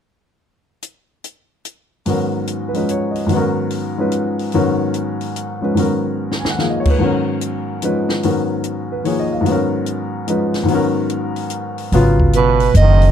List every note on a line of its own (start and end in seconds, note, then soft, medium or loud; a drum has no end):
0.82 closed hi-hat soft
1.24 closed hi-hat soft
1.65 closed hi-hat soft
2.06 3.25 G#2 soft
2.06 3.27 D#3 soft
2.06 3.29 F#3 soft
2.06 3.30 B3 soft
2.06 2.73 C#4 soft
2.06 open hi-hat soft
2.10 3.31 A#4 soft
2.47 closed hi-hat soft
2.68 2.75 B4 soft
2.74 3.29 F3 soft
2.74 3.29 G#3 soft
2.74 3.30 C#4 soft
2.74 3.30 D#4 soft
2.74 3.31 B4 soft
2.74 open hi-hat soft
2.89 3.21 C#5 soft
2.89 closed hi-hat soft
3.11 3.39 D#5 soft
3.16 open hi-hat soft
3.26 4.51 G#2 soft
3.26 4.53 D#3 soft
3.26 open hi-hat soft
3.31 4.53 F#3 soft
3.31 4.53 B3 soft
3.35 3.98 C#4 soft
3.35 4.54 A#4 medium
3.70 open hi-hat soft
3.98 4.53 F3 soft
3.98 4.53 G#3 soft
3.98 4.53 C#4 soft
3.98 4.54 D#4 soft
3.98 4.54 B4 soft
4.12 closed hi-hat soft
4.39 open hi-hat soft
4.52 5.73 G#2 medium
4.52 5.74 D#3 soft
4.52 5.75 F#3 medium
4.52 5.76 B3 soft
4.52 5.60 C#4 soft
4.52 5.77 A#4 medium
4.52 open hi-hat soft
4.94 closed hi-hat soft
5.21 open hi-hat soft
5.36 closed hi-hat soft
5.61 5.76 F3 soft
5.61 5.76 G#3 soft
5.61 5.76 C#4 soft
5.61 5.77 D#4 soft
5.61 5.77 B4 soft
5.74 6.97 G#2 soft
5.74 6.57 D#3 soft
5.74 7.00 F#3 soft
5.74 7.00 B3 soft
5.74 7.01 C#4 soft
5.74 open hi-hat soft
5.80 7.01 A#4 medium
6.32 snare soft
6.40 6.52 G#5 soft
6.45 snare medium
6.50 6.64 F#5 soft
6.58 6.98 D#3 soft
6.58 7.00 F3 soft
6.58 7.00 A#3 soft
6.58 7.01 G#4 soft
6.58 6.78 F5 soft
6.58 snare soft
6.70 6.87 D#5 soft
6.80 6.92 C#5 soft
6.85 kick medium
6.85 crash soft
6.90 7.04 B4 soft
6.98 8.22 G#2 soft
6.98 8.23 D#3 soft
6.98 8.22 F#3 soft
6.98 8.23 B3 soft
7.04 7.82 C#4 soft
7.04 8.23 A#4 soft
7.41 closed hi-hat soft
7.82 8.23 F3 soft
7.82 8.23 G#3 soft
7.82 8.23 C#4 soft
7.82 8.24 D#4 soft
7.82 8.24 B4 soft
7.82 closed hi-hat soft
8.09 snare soft
8.23 9.39 G#2 soft
8.23 9.03 D#3 soft
8.23 9.43 F#3 soft
8.23 9.46 B3 soft
8.23 9.47 C#4 soft
8.23 9.47 A#4 soft
8.23 open hi-hat soft
8.64 closed hi-hat soft
8.92 9.13 B4 soft
9.04 9.42 D#3 soft
9.04 9.46 F3 soft
9.04 9.46 A#3 soft
9.04 9.47 G#4 soft
9.04 9.30 C#5 soft
9.04 open hi-hat soft
9.19 9.40 D#5 soft
9.32 9.54 F5 soft
9.41 10.62 G#2 soft
9.41 10.64 D#3 soft
9.45 10.67 F#3 soft
9.45 10.69 B3 soft
9.45 open hi-hat soft
9.50 10.27 C#4 soft
9.50 10.72 A#4 medium
9.86 closed hi-hat soft
10.27 10.69 F3 soft
10.27 10.69 G#3 soft
10.27 10.70 C#4 soft
10.27 10.70 D#4 soft
10.27 10.70 B4 soft
10.27 closed hi-hat soft
10.54 snare soft
10.54 open hi-hat soft
10.63 11.90 G#2 soft
10.63 11.91 D#3 medium
10.68 11.92 F#3 medium
10.68 11.92 B3 medium
10.68 open hi-hat soft
10.73 11.94 C#4 soft
10.73 11.95 A#4 medium
11.10 closed hi-hat soft
11.36 open hi-hat soft
11.50 closed hi-hat soft
11.78 open hi-hat soft
11.92 12.71 G#1 medium
11.92 12.56 C#3 medium
11.92 12.56 F#3 medium
11.92 12.56 B3 medium
11.92 12.57 F4 medium
11.92 open hi-hat soft
12.20 kick soft
12.33 12.73 B2 medium
12.33 12.73 B4 medium
12.33 closed hi-hat soft
12.60 open hi-hat soft
12.74 13.12 F#1 medium
12.74 13.12 D#5 medium
12.74 closed hi-hat soft
12.79 13.12 D#3 medium
13.02 open hi-hat soft